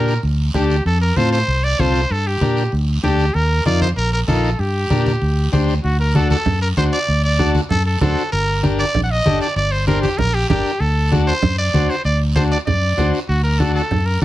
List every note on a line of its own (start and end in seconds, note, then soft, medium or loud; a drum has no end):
0.00 0.17 A#2 medium
0.00 0.14 D4 medium
0.00 0.14 G4 medium
0.00 0.14 A#4 medium
0.00 0.20 A#4 medium
0.08 short guiro medium
0.23 0.48 D2 loud
0.23 long guiro medium
0.54 0.79 D2 medium
0.54 0.76 D4 medium
0.54 0.76 G4 medium
0.54 0.84 G4 medium
0.54 0.77 A4 medium
0.54 high conga medium
0.54 short guiro medium
0.70 short guiro medium
0.85 1.10 F2 loud
0.85 1.00 A4 medium
0.85 long guiro medium
1.02 1.18 A#4 medium
1.16 1.42 A2 medium
1.16 1.39 C4 medium
1.16 1.39 F4 medium
1.16 1.39 A4 medium
1.16 1.32 C5 medium
1.16 high conga medium
1.16 short guiro medium
1.32 1.65 C5 loud
1.32 short guiro medium
1.48 1.73 C2 medium
1.48 long guiro medium
1.64 1.82 D5 loud
1.79 2.04 C2 medium
1.79 2.01 C4 medium
1.79 2.01 F4 medium
1.79 2.01 A4 medium
1.79 2.13 C5 medium
1.79 high conga medium
1.79 short guiro medium
1.94 short guiro medium
2.10 2.35 G2 medium
2.10 2.28 A4 medium
2.10 long guiro medium
2.27 2.73 G4 medium
2.41 2.66 A#2 medium
2.41 2.63 D4 medium
2.41 2.63 G4 medium
2.41 2.63 A#4 medium
2.41 high conga medium
2.41 short guiro medium
2.57 short guiro medium
2.72 2.97 D2 loud
2.72 long guiro medium
3.03 3.28 D2 medium
3.03 3.25 D4 medium
3.03 3.36 G4 medium
3.03 3.25 G4 medium
3.03 3.26 A4 medium
3.03 high conga medium
3.03 short guiro medium
3.19 short guiro medium
3.34 3.60 D#2 loud
3.34 3.66 A#4 medium
3.34 long guiro medium
3.65 3.90 F2 medium
3.65 3.88 D#4 medium
3.65 3.88 F4 medium
3.65 3.88 A#4 medium
3.65 3.80 D5 loud
3.65 high conga medium
3.65 short guiro medium
3.81 3.89 C5 medium
3.81 high conga medium
3.81 short guiro medium
3.96 4.22 A#1 loud
3.96 4.11 A#4 loud
3.96 long guiro medium
4.13 4.20 A#4 medium
4.28 4.53 A#1 medium
4.28 4.50 D#4 medium
4.28 4.50 F4 medium
4.28 4.52 A4 medium
4.28 4.50 A#4 medium
4.28 high conga medium
4.28 short guiro medium
4.43 short guiro medium
4.52 4.61 A4 medium
4.59 4.84 G2 loud
4.59 5.53 G4 medium
4.59 long guiro medium
4.90 5.15 A#2 medium
4.90 5.12 D4 medium
4.90 5.12 G4 medium
4.90 5.13 A#4 medium
4.90 high conga medium
4.90 short guiro medium
5.06 high conga medium
5.06 short guiro medium
5.22 5.46 D2 loud
5.22 long guiro medium
5.52 5.78 D2 medium
5.52 5.74 D4 medium
5.52 5.74 G4 medium
5.52 5.75 C5 medium
5.52 high conga medium
5.52 short guiro medium
5.68 short guiro medium
5.84 6.34 D2 loud
5.84 5.98 F#4 medium
5.84 long guiro medium
6.00 6.17 A#4 medium
6.15 6.37 D4 medium
6.15 6.37 F#4 medium
6.15 6.30 A4 medium
6.15 6.37 A4 medium
6.15 high conga medium
6.15 short guiro medium
6.30 6.60 A4 loud
6.30 high conga medium
6.30 short guiro medium
6.46 6.71 F#2 medium
6.46 low conga medium
6.46 long guiro medium
6.62 6.69 A#4 medium
6.77 6.90 D2 medium
6.77 6.99 D4 medium
6.77 6.99 F#4 medium
6.77 6.84 C5 loud
6.77 6.99 C5 medium
6.77 high conga medium
6.77 short guiro medium
6.93 7.21 D5 loud
6.93 short guiro medium
7.08 7.58 D2 medium
7.08 long guiro medium
7.24 7.53 D5 medium
7.39 7.61 D4 medium
7.39 7.61 F#4 medium
7.39 7.61 A4 medium
7.39 high conga medium
7.39 short guiro medium
7.55 high conga medium
7.55 short guiro medium
7.70 7.95 F#2 medium
7.70 7.85 A4 medium
7.70 low conga medium
7.70 long guiro medium
7.85 8.00 A4 medium
8.01 8.14 D2 medium
8.01 8.23 D4 medium
8.01 8.23 F#4 medium
8.01 8.30 A4 medium
8.01 8.23 C5 medium
8.01 high conga medium
8.01 low conga medium
8.01 short guiro medium
8.17 short guiro medium
8.32 8.82 G1 loud
8.32 8.61 A#4 loud
8.32 long guiro medium
8.63 8.85 D4 medium
8.63 8.85 G4 medium
8.63 8.85 A#4 medium
8.63 high conga medium
8.63 short guiro medium
8.79 9.01 D5 loud
8.79 short guiro medium
8.94 9.19 A#1 medium
8.94 low conga medium
8.94 long guiro medium
9.03 9.12 F#5 medium
9.11 9.41 D#5 loud
9.25 9.38 G1 medium
9.25 9.47 D4 medium
9.25 9.47 G4 medium
9.25 9.48 A4 medium
9.25 high conga medium
9.25 short guiro medium
9.41 9.56 D5 medium
9.41 short guiro medium
9.56 10.06 G1 loud
9.56 9.73 D5 loud
9.56 long guiro medium
9.71 9.86 C5 medium
9.87 10.09 D4 medium
9.87 10.09 G4 medium
9.87 10.01 A#4 medium
9.87 10.09 C5 medium
9.87 high conga medium
9.87 short guiro medium
10.02 10.20 G4 medium
10.02 high conga medium
10.02 short guiro medium
10.18 10.43 A#1 loud
10.18 10.35 A#4 loud
10.18 low conga medium
10.18 long guiro medium
10.34 10.48 G4 medium
10.49 10.62 G1 medium
10.49 10.71 D4 medium
10.49 10.82 G4 medium
10.49 10.72 G4 medium
10.49 10.72 A#4 medium
10.49 high conga medium
10.49 low conga medium
10.49 short guiro medium
10.65 short guiro medium
10.80 11.30 D2 loud
10.80 11.12 A4 medium
10.80 long guiro medium
11.12 11.33 D4 medium
11.12 11.34 F#4 medium
11.12 11.34 A4 medium
11.12 high conga medium
11.12 short guiro medium
11.28 11.56 C5 loud
11.28 short guiro medium
11.42 11.68 F#2 loud
11.42 low conga medium
11.42 long guiro medium
11.58 11.91 D5 loud
11.74 11.86 D2 medium
11.74 11.95 D4 medium
11.74 11.96 F#4 medium
11.74 11.96 C5 medium
11.74 high conga medium
11.74 short guiro medium
11.90 12.04 C5 medium
11.90 short guiro medium
12.05 12.54 D2 loud
12.05 12.19 D5 loud
12.05 long guiro medium
12.36 12.58 D4 medium
12.36 12.58 F#4 medium
12.36 12.58 A4 medium
12.36 12.43 C5 medium
12.36 high conga medium
12.36 short guiro medium
12.51 12.58 D5 medium
12.51 short guiro medium
12.66 12.92 F#2 loud
12.66 13.10 D5 loud
12.66 low conga medium
12.66 long guiro medium
12.97 13.10 D2 medium
12.97 13.19 D4 medium
12.97 13.20 F#4 medium
12.97 13.20 C5 medium
12.97 high conga medium
12.97 short guiro medium
13.14 short guiro medium
13.28 13.79 D2 loud
13.28 13.43 F#4 medium
13.28 long guiro medium
13.43 13.60 A#4 medium
13.59 13.82 D4 medium
13.59 13.82 F#4 medium
13.59 13.74 A4 medium
13.59 13.82 A4 medium
13.59 high conga medium
13.59 short guiro medium
13.75 14.07 A4 medium
13.75 short guiro medium
13.91 14.16 F#2 loud
13.91 low conga medium
13.91 long guiro medium
14.06 14.22 A#4 medium
14.22 high conga medium